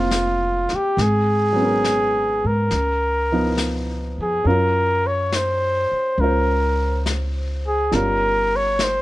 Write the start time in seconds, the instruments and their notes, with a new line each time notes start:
Already playing: upright bass F1, upright piano F3 G#3 A#3 C4 C#4 F4, trumpet F4
0.11 snare, hi-hat pedal
0.69 muted upright bass stroke, snare
0.75 trumpet G4
0.97 upright bass G#1, brush sweep, snare
1.01 trumpet G#4
1.53 upright piano F#3 B3
1.60 upright piano C#4 A#4
1.84 snare, hi-hat pedal
2.44 upright bass G#2, trumpet A#4
2.71 upright bass C#2, brush sweep, snare
3.32 upright piano F3 B3 D#4 A#4
3.58 snare, hi-hat pedal
4.18 upright bass F2
4.22 trumpet G#4
4.44 upright bass F#2, upright piano F#3 C#4 F4, trumpet A#4, brush sweep
4.49 upright piano A#4
5.07 trumpet C#5
5.32 trumpet C5, snare, hi-hat pedal
5.91 muted upright bass stroke
6.18 upright bass C#2, upright piano F4, trumpet A#4, brush sweep
6.24 upright piano C5
7.06 snare, hi-hat pedal
7.68 trumpet G#4
7.91 upright bass G1, upright piano G3 C#4 F4, trumpet A#4, brush sweep, snare
7.97 upright piano A#4
8.56 trumpet C#5
8.79 snare, hi-hat pedal
8.84 trumpet C5